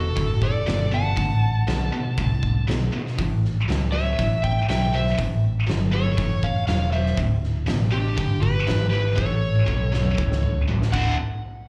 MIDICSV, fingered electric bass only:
0, 0, Header, 1, 3, 480
1, 0, Start_track
1, 0, Key_signature, 2, "major"
1, 0, Tempo, 500417
1, 1129, Time_signature, 4, 2, 24, 8
1, 11203, End_track
2, 0, Start_track
2, 0, Title_t, "Fingered electric bass"
2, 0, Program_c, 0, 33
2, 0, Note_on_c, 0, 28, 85
2, 152, Note_off_c, 0, 28, 0
2, 158, Note_on_c, 0, 30, 83
2, 629, Note_off_c, 0, 30, 0
2, 654, Note_on_c, 0, 31, 81
2, 1118, Note_off_c, 0, 31, 0
2, 1127, Note_on_c, 0, 33, 84
2, 1595, Note_off_c, 0, 33, 0
2, 1611, Note_on_c, 0, 35, 83
2, 1835, Note_off_c, 0, 35, 0
2, 2088, Note_on_c, 0, 36, 82
2, 2557, Note_off_c, 0, 36, 0
2, 2574, Note_on_c, 0, 35, 83
2, 2797, Note_off_c, 0, 35, 0
2, 3060, Note_on_c, 0, 33, 84
2, 3523, Note_off_c, 0, 33, 0
2, 3535, Note_on_c, 0, 37, 88
2, 4000, Note_off_c, 0, 37, 0
2, 4016, Note_on_c, 0, 33, 82
2, 4480, Note_off_c, 0, 33, 0
2, 4490, Note_on_c, 0, 35, 84
2, 4956, Note_off_c, 0, 35, 0
2, 4970, Note_on_c, 0, 33, 80
2, 5435, Note_off_c, 0, 33, 0
2, 5443, Note_on_c, 0, 31, 97
2, 5911, Note_off_c, 0, 31, 0
2, 5928, Note_on_c, 0, 30, 87
2, 6393, Note_off_c, 0, 30, 0
2, 6398, Note_on_c, 0, 28, 81
2, 6867, Note_off_c, 0, 28, 0
2, 6883, Note_on_c, 0, 26, 86
2, 7349, Note_off_c, 0, 26, 0
2, 7367, Note_on_c, 0, 33, 91
2, 7830, Note_off_c, 0, 33, 0
2, 7839, Note_on_c, 0, 31, 82
2, 8306, Note_off_c, 0, 31, 0
2, 8333, Note_on_c, 0, 32, 82
2, 8793, Note_off_c, 0, 32, 0
2, 8808, Note_on_c, 0, 33, 82
2, 9270, Note_off_c, 0, 33, 0
2, 9289, Note_on_c, 0, 35, 93
2, 9751, Note_off_c, 0, 35, 0
2, 9770, Note_on_c, 0, 37, 80
2, 10231, Note_off_c, 0, 37, 0
2, 10253, Note_on_c, 0, 33, 76
2, 10480, Note_off_c, 0, 33, 0
2, 10492, Note_on_c, 0, 26, 79
2, 10710, Note_off_c, 0, 26, 0
2, 11203, End_track
3, 0, Start_track
3, 0, Title_t, "Muted fingered electric bass strokes"
3, 2810, Note_on_c, 9, 29, 36
3, 2906, Note_off_c, 9, 29, 0
3, 11203, End_track
0, 0, End_of_file